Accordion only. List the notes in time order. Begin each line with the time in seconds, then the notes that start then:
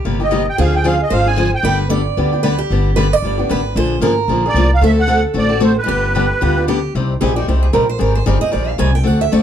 0.23 D#5
0.49 G5
0.60 F5
0.76 G5
0.87 F5
1.03 D#5
1.13 F5
1.27 G#5
1.55 G5
4.49 D5
4.74 F5
4.86 E5
5.00 F#5
5.38 D5
5.64 C5
5.78 B4